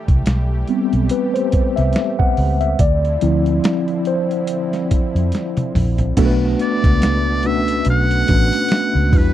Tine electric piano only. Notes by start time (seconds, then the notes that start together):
0.69 G3 B3 C4
1.11 B4
1.34 C5
1.76 E5
2.19 F#5
2.61 E5
2.80 D5
3.22 F3 C4 E4
4.07 C5
6.17 A3 B3 D4 F#4 A4
6.26 B4
7.44 A3 C#4 D4 F#4 B4
8.27 A3 C#4 D4 F#4 B4
9.12 G3 D4 E4 F#4 B4